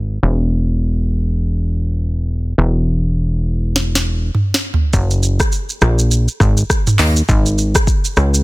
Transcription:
0.00 0.19 G#1 medium
0.23 2.54 E1 medium
2.58 4.31 E1 medium
3.76 snare medium
3.95 snare medium
4.35 mid tom medium
4.54 snare medium
4.74 floor tom medium
4.93 5.40 F#1 loud
4.93 kick loud
4.93 shaker medium
5.11 shaker medium
5.23 shaker medium
5.40 kick loud
5.40 cross-stick loud
5.40 shaker medium
5.52 shaker medium
5.69 shaker medium
5.81 6.28 A#1 loud
5.81 cross-stick loud
5.81 shaker soft
5.99 shaker medium
6.11 shaker medium
6.28 shaker medium
6.40 6.63 G#1 loud
6.40 kick medium
6.40 cross-stick medium
6.40 shaker medium
6.57 shaker medium
6.70 kick medium
6.70 cross-stick medium
6.70 shaker medium
6.87 mid tom loud
6.87 shaker medium
6.99 7.22 D#2 loud
6.99 clap loud
6.99 open hi-hat medium
6.99 shaker medium
7.16 shaker medium
7.29 7.75 G#1 loud
7.29 kick loud
7.29 shaker medium
7.46 shaker medium
7.58 shaker medium
7.75 kick medium
7.75 cross-stick loud
7.75 shaker medium
7.87 kick medium
7.87 shaker medium
8.05 shaker medium
8.17 8.43 C#2 medium
8.17 cross-stick loud
8.17 shaker soft
8.34 shaker medium

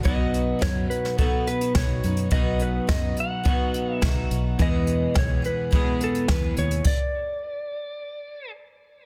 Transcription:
0.03 0.52 B1 medium
0.03 0.61 B2 medium
0.03 0.58 F#3 medium
0.03 0.60 B3 medium
0.03 0.60 D#4 medium
0.03 0.62 F#4 medium
0.03 0.64 D#5 medium
0.03 kick loud
0.03 closed hi-hat medium
0.34 closed hi-hat medium
0.59 0.86 F#2 medium
0.59 1.17 F#3 medium
0.59 1.19 D#4 medium
0.59 0.90 C#5 medium
0.59 kick loud
0.59 snare loud
0.59 closed hi-hat medium
0.63 1.19 F#4 medium
0.90 1.19 B4 medium
0.90 closed hi-hat medium
1.05 snare soft
1.18 1.76 B2 medium
1.18 1.75 F#3 medium
1.18 1.76 B3 medium
1.18 1.76 D#4 medium
1.18 1.77 F#4 medium
1.18 1.48 A4 medium
1.18 kick loud
1.18 closed hi-hat medium
1.47 1.76 B4 medium
1.47 closed hi-hat medium
1.61 closed hi-hat medium
1.75 1.99 B1 medium
1.75 2.04 F#3 medium
1.75 2.05 B3 medium
1.75 2.04 D#4 medium
1.75 2.03 F#4 medium
1.75 2.32 C#5 medium
1.75 kick loud
1.75 snare loud
1.75 closed hi-hat medium
2.03 2.27 F#2 medium
2.03 2.31 B3 soft
2.03 2.32 D#4 soft
2.03 2.32 F#4 soft
2.03 closed hi-hat medium
2.17 closed hi-hat medium
2.30 2.79 B1 medium
2.30 2.88 B2 medium
2.30 2.86 F#3 medium
2.30 2.89 B3 medium
2.30 2.88 D#4 medium
2.30 2.89 F#4 medium
2.30 2.62 D#5 medium
2.30 kick loud
2.30 closed hi-hat medium
2.59 2.91 B4 medium
2.59 closed hi-hat medium
2.87 3.12 F#2 medium
2.87 3.43 F#3 medium
2.87 3.45 B3 medium
2.87 3.45 D#4 medium
2.87 3.45 F#4 medium
2.87 3.18 D#5 medium
2.87 kick loud
2.87 snare loud
2.87 closed hi-hat medium
3.17 3.95 F#5 loud
3.17 closed hi-hat medium
3.43 4.01 B2 medium
3.43 4.00 F#3 medium
3.43 4.01 B3 medium
3.43 4.02 D#4 medium
3.43 4.02 F#4 medium
3.43 kick medium
3.43 closed hi-hat medium
3.74 closed hi-hat medium
3.95 4.28 E5 loud
4.01 4.26 B1 medium
4.01 4.58 F#3 medium
4.01 4.58 B3 medium
4.01 4.59 D#4 medium
4.01 4.60 F#4 medium
4.01 kick loud
4.01 snare loud
4.01 closed hi-hat medium
4.31 4.54 B1 medium
4.31 closed hi-hat medium
4.59 5.15 E2 medium
4.59 5.06 E2 medium
4.59 5.15 B2 medium
4.59 5.13 E3 medium
4.59 5.14 G#3 medium
4.59 5.15 B3 medium
4.59 5.16 G#4 medium
4.59 5.19 D#5 medium
4.59 kick medium
4.59 closed hi-hat medium
4.87 closed hi-hat medium
5.15 5.39 B1 medium
5.15 5.43 G#3 medium
5.15 5.43 B3 medium
5.15 5.41 G#4 medium
5.15 5.45 C#5 medium
5.15 kick loud
5.15 snare loud
5.15 closed hi-hat medium
5.42 5.71 E3 soft
5.42 5.72 G#3 soft
5.42 5.72 B3 soft
5.42 5.71 G#4 soft
5.42 6.03 B4 medium
5.42 closed hi-hat medium
5.71 6.28 E2 medium
5.71 6.28 B2 medium
5.71 6.27 E3 medium
5.71 6.28 G#3 medium
5.71 6.29 B3 medium
5.71 6.29 G#4 medium
5.71 kick medium
5.71 closed hi-hat soft
6.01 6.31 A4 medium
6.01 closed hi-hat medium
6.15 closed hi-hat medium
6.28 6.52 E2 medium
6.28 6.86 B3 medium
6.28 6.86 G#4 medium
6.28 6.56 B4 medium
6.28 kick loud
6.28 snare loud
6.28 closed hi-hat medium
6.57 6.80 D#2 medium
6.57 6.86 C#5 medium
6.57 closed hi-hat medium
6.71 closed hi-hat medium
6.84 8.51 D5 medium
6.84 kick loud
6.84 crash medium

